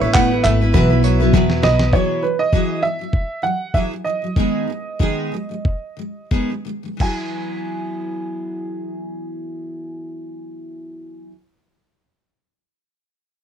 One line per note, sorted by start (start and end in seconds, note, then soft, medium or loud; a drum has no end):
0.00 0.41 A1 medium
0.00 0.28 B3 medium
0.00 0.15 B3 soft
0.00 0.28 E4 medium
0.00 0.15 E4 medium
0.00 0.29 A4 medium
0.00 0.15 B4 medium
0.00 0.14 C#5 medium
0.00 0.16 E5 loud
0.00 0.29 E5 medium
0.14 0.31 A3 medium
0.14 0.32 B3 medium
0.14 0.31 E4 loud
0.14 0.30 B4 medium
0.14 0.42 F#5 loud
0.14 kick loud
0.14 clap loud
0.31 0.44 B3 soft
0.31 0.44 E4 soft
0.31 0.44 B4 medium
0.43 0.72 G#1 medium
0.43 0.61 A3 medium
0.43 0.61 B3 medium
0.43 0.61 E4 medium
0.43 0.60 A4 medium
0.43 0.60 B4 medium
0.43 1.59 E5 medium
0.43 clap medium
0.43 tambourine medium
0.61 0.73 B3 soft
0.61 0.74 E4 medium
0.61 0.74 B4 medium
0.73 1.30 B1 loud
0.73 0.90 B2 medium
0.73 0.90 E3 medium
0.73 0.90 F#3 medium
0.73 1.47 B3 medium
0.73 0.90 B3 medium
0.73 1.47 E4 medium
0.73 0.89 E4 medium
0.73 1.47 F#4 medium
0.73 0.89 B4 medium
0.73 1.48 E5 medium
0.73 kick loud
0.90 1.01 F#3 soft
0.90 1.02 B3 soft
0.90 1.03 E4 medium
0.90 1.03 B4 medium
1.03 1.19 F#3 medium
1.03 1.20 B3 medium
1.03 1.19 E4 medium
1.03 1.19 B4 medium
1.03 1.19 C#5 medium
1.03 tambourine medium
1.20 1.33 F#3 medium
1.20 1.33 B3 medium
1.20 1.34 E4 medium
1.20 1.33 B4 medium
1.33 1.61 E2 loud
1.33 1.63 B2 medium
1.33 1.63 E3 medium
1.33 1.62 F#3 medium
1.33 1.63 B3 loud
1.33 1.63 E4 loud
1.33 1.64 B4 loud
1.33 kick loud
1.33 snare medium
1.50 snare medium
1.63 1.90 B1 medium
1.63 1.92 F#3 medium
1.63 1.92 B3 medium
1.63 1.93 E4 medium
1.63 1.94 B4 medium
1.63 1.94 D#5 medium
1.63 snare loud
1.79 snare medium
1.93 2.21 E3 medium
1.93 2.23 F#3 medium
1.93 2.23 B3 medium
1.93 2.23 E4 medium
1.93 2.23 G#4 medium
1.93 2.24 C#5 medium
1.93 kick loud
2.23 2.47 E3 medium
2.23 2.48 F#3 medium
2.23 2.39 B4 medium
2.39 2.84 D#5 loud
2.52 2.82 E3 medium
2.52 2.83 F#3 medium
2.52 2.83 B3 medium
2.52 2.83 E4 medium
2.52 2.83 G#4 medium
2.52 kick loud
2.83 2.98 E3 medium
2.83 3.00 F#3 medium
2.83 3.45 E5 medium
2.99 3.23 E3 soft
2.99 3.24 F#3 soft
3.13 kick loud
3.42 3.67 E3 medium
3.42 3.69 F#3 medium
3.42 3.74 F#5 medium
3.74 3.90 E3 medium
3.74 3.91 F#3 medium
3.74 3.91 B3 medium
3.74 3.91 E4 medium
3.74 3.92 G#4 medium
3.74 3.81 E5 medium
3.74 kick medium
3.91 4.04 E3 soft
3.91 4.06 F#3 soft
4.04 4.21 E3 medium
4.04 4.23 F#3 medium
4.04 6.27 D#5 medium
4.22 4.36 E3 soft
4.22 4.36 F#3 soft
4.36 4.66 D#3 medium
4.36 4.68 G#3 medium
4.36 4.68 B3 medium
4.36 4.68 D#4 medium
4.36 4.68 G#4 medium
4.36 kick loud
4.67 4.93 D#3 soft
4.67 4.94 G#3 medium
4.99 5.31 D#3 medium
4.99 5.32 G#3 medium
4.99 5.32 B3 medium
4.99 5.32 D#4 medium
4.99 5.32 G#4 medium
4.99 kick medium
5.32 5.48 D#3 medium
5.32 5.50 G#3 medium
5.49 5.75 D#3 soft
5.49 5.76 G#3 medium
5.65 kick medium
5.97 6.24 D#3 soft
5.97 6.26 G#3 medium
6.31 6.48 D#3 medium
6.31 6.50 G#3 medium
6.31 6.50 B3 medium
6.31 6.50 D#4 medium
6.31 6.50 G#4 medium
6.31 kick medium
6.50 6.64 D#3 soft
6.50 6.65 G#3 soft
6.65 6.82 D#3 medium
6.65 6.84 G#3 medium
6.83 6.97 D#3 soft
6.83 6.99 G#3 soft
6.97 11.29 E3 medium
6.97 11.30 F#3 medium
6.97 11.31 B3 medium
6.97 kick medium
6.97 crash medium
7.01 11.32 E4 medium
7.01 11.33 G#4 medium
7.01 11.27 G#5 medium